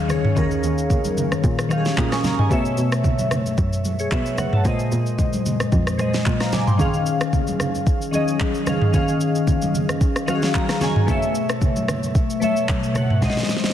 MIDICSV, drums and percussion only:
0, 0, Header, 1, 2, 480
1, 0, Start_track
1, 0, Tempo, 535714
1, 329, Time_signature, 4, 2, 24, 8
1, 12306, End_track
2, 0, Start_track
2, 0, Title_t, "Drums"
2, 83, Note_on_c, 9, 63, 69
2, 83, Note_on_c, 9, 64, 71
2, 86, Note_on_c, 9, 82, 78
2, 90, Note_on_c, 9, 37, 90
2, 172, Note_off_c, 9, 63, 0
2, 172, Note_off_c, 9, 64, 0
2, 176, Note_off_c, 9, 82, 0
2, 179, Note_off_c, 9, 37, 0
2, 221, Note_on_c, 9, 45, 97
2, 310, Note_off_c, 9, 45, 0
2, 322, Note_on_c, 9, 64, 75
2, 328, Note_on_c, 9, 36, 115
2, 329, Note_on_c, 9, 82, 82
2, 412, Note_off_c, 9, 64, 0
2, 418, Note_off_c, 9, 36, 0
2, 418, Note_off_c, 9, 82, 0
2, 457, Note_on_c, 9, 82, 50
2, 547, Note_off_c, 9, 82, 0
2, 569, Note_on_c, 9, 82, 88
2, 658, Note_off_c, 9, 82, 0
2, 699, Note_on_c, 9, 82, 54
2, 789, Note_off_c, 9, 82, 0
2, 803, Note_on_c, 9, 64, 78
2, 808, Note_on_c, 9, 36, 82
2, 809, Note_on_c, 9, 82, 64
2, 893, Note_off_c, 9, 64, 0
2, 898, Note_off_c, 9, 36, 0
2, 899, Note_off_c, 9, 82, 0
2, 936, Note_on_c, 9, 82, 63
2, 940, Note_on_c, 9, 63, 75
2, 1026, Note_off_c, 9, 82, 0
2, 1029, Note_off_c, 9, 63, 0
2, 1050, Note_on_c, 9, 64, 74
2, 1053, Note_on_c, 9, 82, 86
2, 1140, Note_off_c, 9, 64, 0
2, 1142, Note_off_c, 9, 82, 0
2, 1180, Note_on_c, 9, 63, 54
2, 1181, Note_on_c, 9, 37, 88
2, 1183, Note_on_c, 9, 82, 48
2, 1270, Note_off_c, 9, 63, 0
2, 1271, Note_off_c, 9, 37, 0
2, 1272, Note_off_c, 9, 82, 0
2, 1288, Note_on_c, 9, 36, 118
2, 1289, Note_on_c, 9, 82, 64
2, 1377, Note_off_c, 9, 36, 0
2, 1379, Note_off_c, 9, 82, 0
2, 1422, Note_on_c, 9, 37, 97
2, 1424, Note_on_c, 9, 82, 58
2, 1512, Note_off_c, 9, 37, 0
2, 1514, Note_off_c, 9, 82, 0
2, 1532, Note_on_c, 9, 82, 92
2, 1533, Note_on_c, 9, 37, 89
2, 1534, Note_on_c, 9, 63, 66
2, 1621, Note_off_c, 9, 82, 0
2, 1622, Note_off_c, 9, 37, 0
2, 1623, Note_off_c, 9, 63, 0
2, 1660, Note_on_c, 9, 82, 55
2, 1666, Note_on_c, 9, 38, 64
2, 1749, Note_off_c, 9, 82, 0
2, 1756, Note_off_c, 9, 38, 0
2, 1769, Note_on_c, 9, 82, 76
2, 1770, Note_on_c, 9, 63, 67
2, 1771, Note_on_c, 9, 36, 91
2, 1772, Note_on_c, 9, 39, 88
2, 1859, Note_off_c, 9, 82, 0
2, 1860, Note_off_c, 9, 36, 0
2, 1860, Note_off_c, 9, 63, 0
2, 1862, Note_off_c, 9, 39, 0
2, 1899, Note_on_c, 9, 82, 49
2, 1902, Note_on_c, 9, 37, 89
2, 1902, Note_on_c, 9, 38, 65
2, 1989, Note_off_c, 9, 82, 0
2, 1991, Note_off_c, 9, 37, 0
2, 1991, Note_off_c, 9, 38, 0
2, 2004, Note_on_c, 9, 63, 69
2, 2004, Note_on_c, 9, 64, 70
2, 2007, Note_on_c, 9, 82, 83
2, 2011, Note_on_c, 9, 38, 65
2, 2093, Note_off_c, 9, 63, 0
2, 2093, Note_off_c, 9, 64, 0
2, 2097, Note_off_c, 9, 82, 0
2, 2100, Note_off_c, 9, 38, 0
2, 2141, Note_on_c, 9, 45, 89
2, 2231, Note_off_c, 9, 45, 0
2, 2242, Note_on_c, 9, 64, 78
2, 2248, Note_on_c, 9, 36, 119
2, 2249, Note_on_c, 9, 82, 85
2, 2331, Note_off_c, 9, 64, 0
2, 2338, Note_off_c, 9, 36, 0
2, 2339, Note_off_c, 9, 82, 0
2, 2377, Note_on_c, 9, 82, 50
2, 2467, Note_off_c, 9, 82, 0
2, 2487, Note_on_c, 9, 82, 91
2, 2577, Note_off_c, 9, 82, 0
2, 2617, Note_on_c, 9, 82, 54
2, 2619, Note_on_c, 9, 37, 97
2, 2707, Note_off_c, 9, 82, 0
2, 2709, Note_off_c, 9, 37, 0
2, 2720, Note_on_c, 9, 64, 80
2, 2727, Note_on_c, 9, 36, 79
2, 2727, Note_on_c, 9, 82, 61
2, 2810, Note_off_c, 9, 64, 0
2, 2816, Note_off_c, 9, 36, 0
2, 2817, Note_off_c, 9, 82, 0
2, 2856, Note_on_c, 9, 82, 63
2, 2860, Note_on_c, 9, 63, 74
2, 2945, Note_off_c, 9, 82, 0
2, 2950, Note_off_c, 9, 63, 0
2, 2967, Note_on_c, 9, 37, 96
2, 2968, Note_on_c, 9, 64, 71
2, 2971, Note_on_c, 9, 82, 85
2, 3056, Note_off_c, 9, 37, 0
2, 3058, Note_off_c, 9, 64, 0
2, 3061, Note_off_c, 9, 82, 0
2, 3101, Note_on_c, 9, 82, 50
2, 3102, Note_on_c, 9, 63, 55
2, 3191, Note_off_c, 9, 63, 0
2, 3191, Note_off_c, 9, 82, 0
2, 3206, Note_on_c, 9, 36, 120
2, 3206, Note_on_c, 9, 82, 66
2, 3295, Note_off_c, 9, 82, 0
2, 3296, Note_off_c, 9, 36, 0
2, 3341, Note_on_c, 9, 82, 60
2, 3431, Note_off_c, 9, 82, 0
2, 3447, Note_on_c, 9, 82, 93
2, 3452, Note_on_c, 9, 63, 67
2, 3537, Note_off_c, 9, 82, 0
2, 3542, Note_off_c, 9, 63, 0
2, 3576, Note_on_c, 9, 82, 52
2, 3665, Note_off_c, 9, 82, 0
2, 3684, Note_on_c, 9, 82, 72
2, 3687, Note_on_c, 9, 39, 87
2, 3689, Note_on_c, 9, 36, 95
2, 3689, Note_on_c, 9, 63, 64
2, 3774, Note_off_c, 9, 82, 0
2, 3777, Note_off_c, 9, 39, 0
2, 3779, Note_off_c, 9, 36, 0
2, 3779, Note_off_c, 9, 63, 0
2, 3815, Note_on_c, 9, 82, 51
2, 3905, Note_off_c, 9, 82, 0
2, 3924, Note_on_c, 9, 82, 83
2, 3925, Note_on_c, 9, 63, 66
2, 3925, Note_on_c, 9, 64, 69
2, 3927, Note_on_c, 9, 37, 89
2, 4013, Note_off_c, 9, 82, 0
2, 4015, Note_off_c, 9, 63, 0
2, 4015, Note_off_c, 9, 64, 0
2, 4017, Note_off_c, 9, 37, 0
2, 4057, Note_on_c, 9, 45, 98
2, 4147, Note_off_c, 9, 45, 0
2, 4165, Note_on_c, 9, 64, 76
2, 4166, Note_on_c, 9, 82, 81
2, 4167, Note_on_c, 9, 36, 114
2, 4255, Note_off_c, 9, 64, 0
2, 4255, Note_off_c, 9, 82, 0
2, 4257, Note_off_c, 9, 36, 0
2, 4294, Note_on_c, 9, 82, 51
2, 4384, Note_off_c, 9, 82, 0
2, 4406, Note_on_c, 9, 82, 93
2, 4496, Note_off_c, 9, 82, 0
2, 4537, Note_on_c, 9, 82, 53
2, 4627, Note_off_c, 9, 82, 0
2, 4642, Note_on_c, 9, 64, 74
2, 4647, Note_on_c, 9, 36, 79
2, 4647, Note_on_c, 9, 82, 62
2, 4732, Note_off_c, 9, 64, 0
2, 4737, Note_off_c, 9, 36, 0
2, 4737, Note_off_c, 9, 82, 0
2, 4776, Note_on_c, 9, 82, 65
2, 4780, Note_on_c, 9, 63, 74
2, 4865, Note_off_c, 9, 82, 0
2, 4869, Note_off_c, 9, 63, 0
2, 4890, Note_on_c, 9, 64, 75
2, 4891, Note_on_c, 9, 82, 85
2, 4980, Note_off_c, 9, 64, 0
2, 4980, Note_off_c, 9, 82, 0
2, 5019, Note_on_c, 9, 37, 92
2, 5020, Note_on_c, 9, 63, 52
2, 5020, Note_on_c, 9, 82, 50
2, 5109, Note_off_c, 9, 37, 0
2, 5109, Note_off_c, 9, 63, 0
2, 5110, Note_off_c, 9, 82, 0
2, 5127, Note_on_c, 9, 82, 62
2, 5128, Note_on_c, 9, 36, 120
2, 5217, Note_off_c, 9, 36, 0
2, 5217, Note_off_c, 9, 82, 0
2, 5260, Note_on_c, 9, 37, 91
2, 5263, Note_on_c, 9, 82, 59
2, 5350, Note_off_c, 9, 37, 0
2, 5352, Note_off_c, 9, 82, 0
2, 5369, Note_on_c, 9, 82, 91
2, 5370, Note_on_c, 9, 37, 91
2, 5373, Note_on_c, 9, 63, 72
2, 5459, Note_off_c, 9, 82, 0
2, 5460, Note_off_c, 9, 37, 0
2, 5462, Note_off_c, 9, 63, 0
2, 5498, Note_on_c, 9, 82, 51
2, 5504, Note_on_c, 9, 38, 69
2, 5587, Note_off_c, 9, 82, 0
2, 5594, Note_off_c, 9, 38, 0
2, 5605, Note_on_c, 9, 82, 73
2, 5608, Note_on_c, 9, 39, 87
2, 5610, Note_on_c, 9, 36, 92
2, 5611, Note_on_c, 9, 63, 71
2, 5695, Note_off_c, 9, 82, 0
2, 5698, Note_off_c, 9, 39, 0
2, 5700, Note_off_c, 9, 36, 0
2, 5701, Note_off_c, 9, 63, 0
2, 5736, Note_on_c, 9, 82, 53
2, 5739, Note_on_c, 9, 37, 88
2, 5739, Note_on_c, 9, 38, 65
2, 5826, Note_off_c, 9, 82, 0
2, 5828, Note_off_c, 9, 37, 0
2, 5828, Note_off_c, 9, 38, 0
2, 5846, Note_on_c, 9, 82, 80
2, 5848, Note_on_c, 9, 63, 68
2, 5848, Note_on_c, 9, 64, 67
2, 5849, Note_on_c, 9, 38, 65
2, 5935, Note_off_c, 9, 82, 0
2, 5938, Note_off_c, 9, 63, 0
2, 5938, Note_off_c, 9, 64, 0
2, 5939, Note_off_c, 9, 38, 0
2, 5980, Note_on_c, 9, 45, 91
2, 5983, Note_on_c, 9, 82, 49
2, 6070, Note_off_c, 9, 45, 0
2, 6072, Note_off_c, 9, 82, 0
2, 6086, Note_on_c, 9, 64, 80
2, 6088, Note_on_c, 9, 36, 117
2, 6088, Note_on_c, 9, 82, 80
2, 6176, Note_off_c, 9, 64, 0
2, 6177, Note_off_c, 9, 82, 0
2, 6178, Note_off_c, 9, 36, 0
2, 6215, Note_on_c, 9, 82, 52
2, 6305, Note_off_c, 9, 82, 0
2, 6328, Note_on_c, 9, 82, 90
2, 6418, Note_off_c, 9, 82, 0
2, 6458, Note_on_c, 9, 82, 53
2, 6459, Note_on_c, 9, 37, 99
2, 6547, Note_off_c, 9, 82, 0
2, 6549, Note_off_c, 9, 37, 0
2, 6567, Note_on_c, 9, 64, 77
2, 6568, Note_on_c, 9, 36, 80
2, 6569, Note_on_c, 9, 82, 62
2, 6657, Note_off_c, 9, 64, 0
2, 6658, Note_off_c, 9, 36, 0
2, 6658, Note_off_c, 9, 82, 0
2, 6696, Note_on_c, 9, 82, 64
2, 6705, Note_on_c, 9, 63, 73
2, 6786, Note_off_c, 9, 82, 0
2, 6795, Note_off_c, 9, 63, 0
2, 6808, Note_on_c, 9, 37, 90
2, 6812, Note_on_c, 9, 82, 84
2, 6816, Note_on_c, 9, 64, 74
2, 6897, Note_off_c, 9, 37, 0
2, 6902, Note_off_c, 9, 82, 0
2, 6905, Note_off_c, 9, 64, 0
2, 6943, Note_on_c, 9, 82, 51
2, 6946, Note_on_c, 9, 63, 53
2, 7032, Note_off_c, 9, 82, 0
2, 7036, Note_off_c, 9, 63, 0
2, 7048, Note_on_c, 9, 36, 119
2, 7048, Note_on_c, 9, 82, 64
2, 7138, Note_off_c, 9, 36, 0
2, 7138, Note_off_c, 9, 82, 0
2, 7183, Note_on_c, 9, 82, 61
2, 7273, Note_off_c, 9, 82, 0
2, 7289, Note_on_c, 9, 82, 91
2, 7296, Note_on_c, 9, 63, 69
2, 7379, Note_off_c, 9, 82, 0
2, 7385, Note_off_c, 9, 63, 0
2, 7418, Note_on_c, 9, 82, 55
2, 7507, Note_off_c, 9, 82, 0
2, 7525, Note_on_c, 9, 82, 73
2, 7528, Note_on_c, 9, 39, 91
2, 7531, Note_on_c, 9, 36, 95
2, 7534, Note_on_c, 9, 63, 70
2, 7615, Note_off_c, 9, 82, 0
2, 7618, Note_off_c, 9, 39, 0
2, 7620, Note_off_c, 9, 36, 0
2, 7624, Note_off_c, 9, 63, 0
2, 7657, Note_on_c, 9, 82, 51
2, 7746, Note_off_c, 9, 82, 0
2, 7765, Note_on_c, 9, 82, 80
2, 7769, Note_on_c, 9, 37, 91
2, 7769, Note_on_c, 9, 63, 66
2, 7769, Note_on_c, 9, 64, 70
2, 7855, Note_off_c, 9, 82, 0
2, 7858, Note_off_c, 9, 37, 0
2, 7858, Note_off_c, 9, 63, 0
2, 7858, Note_off_c, 9, 64, 0
2, 7899, Note_on_c, 9, 45, 93
2, 7989, Note_off_c, 9, 45, 0
2, 8006, Note_on_c, 9, 64, 80
2, 8007, Note_on_c, 9, 82, 87
2, 8009, Note_on_c, 9, 36, 117
2, 8096, Note_off_c, 9, 64, 0
2, 8097, Note_off_c, 9, 82, 0
2, 8099, Note_off_c, 9, 36, 0
2, 8137, Note_on_c, 9, 82, 51
2, 8227, Note_off_c, 9, 82, 0
2, 8249, Note_on_c, 9, 82, 91
2, 8339, Note_off_c, 9, 82, 0
2, 8379, Note_on_c, 9, 82, 54
2, 8469, Note_off_c, 9, 82, 0
2, 8484, Note_on_c, 9, 64, 73
2, 8489, Note_on_c, 9, 36, 77
2, 8490, Note_on_c, 9, 82, 62
2, 8573, Note_off_c, 9, 64, 0
2, 8579, Note_off_c, 9, 36, 0
2, 8580, Note_off_c, 9, 82, 0
2, 8617, Note_on_c, 9, 82, 61
2, 8623, Note_on_c, 9, 63, 76
2, 8707, Note_off_c, 9, 82, 0
2, 8712, Note_off_c, 9, 63, 0
2, 8730, Note_on_c, 9, 64, 74
2, 8735, Note_on_c, 9, 82, 87
2, 8820, Note_off_c, 9, 64, 0
2, 8824, Note_off_c, 9, 82, 0
2, 8863, Note_on_c, 9, 37, 94
2, 8863, Note_on_c, 9, 63, 50
2, 8864, Note_on_c, 9, 82, 53
2, 8952, Note_off_c, 9, 37, 0
2, 8952, Note_off_c, 9, 63, 0
2, 8953, Note_off_c, 9, 82, 0
2, 8969, Note_on_c, 9, 36, 118
2, 8970, Note_on_c, 9, 82, 66
2, 9059, Note_off_c, 9, 36, 0
2, 9059, Note_off_c, 9, 82, 0
2, 9103, Note_on_c, 9, 37, 95
2, 9105, Note_on_c, 9, 82, 58
2, 9192, Note_off_c, 9, 37, 0
2, 9195, Note_off_c, 9, 82, 0
2, 9211, Note_on_c, 9, 63, 69
2, 9211, Note_on_c, 9, 82, 88
2, 9212, Note_on_c, 9, 37, 90
2, 9300, Note_off_c, 9, 63, 0
2, 9301, Note_off_c, 9, 82, 0
2, 9302, Note_off_c, 9, 37, 0
2, 9339, Note_on_c, 9, 82, 52
2, 9345, Note_on_c, 9, 38, 68
2, 9428, Note_off_c, 9, 82, 0
2, 9435, Note_off_c, 9, 38, 0
2, 9447, Note_on_c, 9, 82, 74
2, 9448, Note_on_c, 9, 63, 64
2, 9450, Note_on_c, 9, 39, 91
2, 9451, Note_on_c, 9, 36, 91
2, 9536, Note_off_c, 9, 82, 0
2, 9538, Note_off_c, 9, 63, 0
2, 9540, Note_off_c, 9, 39, 0
2, 9541, Note_off_c, 9, 36, 0
2, 9577, Note_on_c, 9, 82, 53
2, 9579, Note_on_c, 9, 37, 93
2, 9579, Note_on_c, 9, 38, 65
2, 9667, Note_off_c, 9, 82, 0
2, 9669, Note_off_c, 9, 37, 0
2, 9669, Note_off_c, 9, 38, 0
2, 9685, Note_on_c, 9, 63, 72
2, 9685, Note_on_c, 9, 64, 67
2, 9686, Note_on_c, 9, 82, 81
2, 9689, Note_on_c, 9, 38, 63
2, 9775, Note_off_c, 9, 63, 0
2, 9775, Note_off_c, 9, 64, 0
2, 9775, Note_off_c, 9, 82, 0
2, 9779, Note_off_c, 9, 38, 0
2, 9821, Note_on_c, 9, 45, 97
2, 9911, Note_off_c, 9, 45, 0
2, 9924, Note_on_c, 9, 64, 78
2, 9929, Note_on_c, 9, 36, 113
2, 9929, Note_on_c, 9, 82, 86
2, 10013, Note_off_c, 9, 64, 0
2, 10019, Note_off_c, 9, 36, 0
2, 10019, Note_off_c, 9, 82, 0
2, 10057, Note_on_c, 9, 82, 51
2, 10147, Note_off_c, 9, 82, 0
2, 10169, Note_on_c, 9, 82, 93
2, 10259, Note_off_c, 9, 82, 0
2, 10298, Note_on_c, 9, 82, 51
2, 10300, Note_on_c, 9, 37, 98
2, 10388, Note_off_c, 9, 82, 0
2, 10389, Note_off_c, 9, 37, 0
2, 10403, Note_on_c, 9, 64, 78
2, 10408, Note_on_c, 9, 36, 83
2, 10409, Note_on_c, 9, 82, 60
2, 10492, Note_off_c, 9, 64, 0
2, 10497, Note_off_c, 9, 36, 0
2, 10498, Note_off_c, 9, 82, 0
2, 10538, Note_on_c, 9, 82, 63
2, 10540, Note_on_c, 9, 63, 75
2, 10628, Note_off_c, 9, 82, 0
2, 10630, Note_off_c, 9, 63, 0
2, 10648, Note_on_c, 9, 37, 101
2, 10649, Note_on_c, 9, 64, 78
2, 10653, Note_on_c, 9, 82, 88
2, 10738, Note_off_c, 9, 37, 0
2, 10739, Note_off_c, 9, 64, 0
2, 10743, Note_off_c, 9, 82, 0
2, 10781, Note_on_c, 9, 82, 50
2, 10782, Note_on_c, 9, 63, 52
2, 10871, Note_off_c, 9, 82, 0
2, 10872, Note_off_c, 9, 63, 0
2, 10888, Note_on_c, 9, 36, 116
2, 10888, Note_on_c, 9, 82, 64
2, 10977, Note_off_c, 9, 36, 0
2, 10977, Note_off_c, 9, 82, 0
2, 11022, Note_on_c, 9, 82, 59
2, 11111, Note_off_c, 9, 82, 0
2, 11129, Note_on_c, 9, 82, 88
2, 11133, Note_on_c, 9, 63, 69
2, 11218, Note_off_c, 9, 82, 0
2, 11223, Note_off_c, 9, 63, 0
2, 11258, Note_on_c, 9, 82, 51
2, 11347, Note_off_c, 9, 82, 0
2, 11366, Note_on_c, 9, 82, 78
2, 11369, Note_on_c, 9, 39, 88
2, 11370, Note_on_c, 9, 36, 92
2, 11372, Note_on_c, 9, 63, 66
2, 11456, Note_off_c, 9, 82, 0
2, 11459, Note_off_c, 9, 39, 0
2, 11460, Note_off_c, 9, 36, 0
2, 11462, Note_off_c, 9, 63, 0
2, 11499, Note_on_c, 9, 82, 53
2, 11589, Note_off_c, 9, 82, 0
2, 11606, Note_on_c, 9, 82, 84
2, 11607, Note_on_c, 9, 63, 71
2, 11607, Note_on_c, 9, 64, 71
2, 11610, Note_on_c, 9, 37, 93
2, 11696, Note_off_c, 9, 82, 0
2, 11697, Note_off_c, 9, 63, 0
2, 11697, Note_off_c, 9, 64, 0
2, 11699, Note_off_c, 9, 37, 0
2, 11741, Note_on_c, 9, 45, 96
2, 11831, Note_off_c, 9, 45, 0
2, 11848, Note_on_c, 9, 36, 112
2, 11848, Note_on_c, 9, 64, 80
2, 11849, Note_on_c, 9, 38, 58
2, 11849, Note_on_c, 9, 82, 85
2, 11914, Note_off_c, 9, 38, 0
2, 11914, Note_on_c, 9, 38, 51
2, 11938, Note_off_c, 9, 36, 0
2, 11938, Note_off_c, 9, 64, 0
2, 11938, Note_off_c, 9, 82, 0
2, 11976, Note_on_c, 9, 82, 52
2, 11981, Note_off_c, 9, 38, 0
2, 11981, Note_on_c, 9, 38, 62
2, 12034, Note_off_c, 9, 38, 0
2, 12034, Note_on_c, 9, 38, 56
2, 12066, Note_off_c, 9, 82, 0
2, 12087, Note_on_c, 9, 82, 92
2, 12088, Note_off_c, 9, 38, 0
2, 12088, Note_on_c, 9, 38, 63
2, 12154, Note_off_c, 9, 38, 0
2, 12154, Note_on_c, 9, 38, 53
2, 12177, Note_off_c, 9, 82, 0
2, 12217, Note_on_c, 9, 82, 54
2, 12220, Note_off_c, 9, 38, 0
2, 12220, Note_on_c, 9, 38, 71
2, 12274, Note_off_c, 9, 38, 0
2, 12274, Note_on_c, 9, 38, 57
2, 12306, Note_off_c, 9, 38, 0
2, 12306, Note_off_c, 9, 82, 0
2, 12306, End_track
0, 0, End_of_file